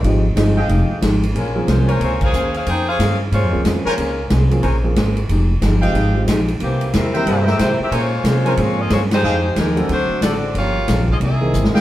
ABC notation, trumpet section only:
X:1
M:4/4
L:1/8
Q:"Swing" 1/4=183
K:Fm
V:1 name="Trumpet section"
z3 [Aefg]3 z2 | z3 [Bcda]3 z2 | z6 z [Bcda] | z4 [Bcda] z3 |
z3 [Aefg]3 z2 | z3 [Bc=eg]2 [Bceg]3 | [Bcda] z2 [Bcda] z4 | [Aefg] z4 z [=Ac=d^f] z |
z6 z [^G^df=g] |]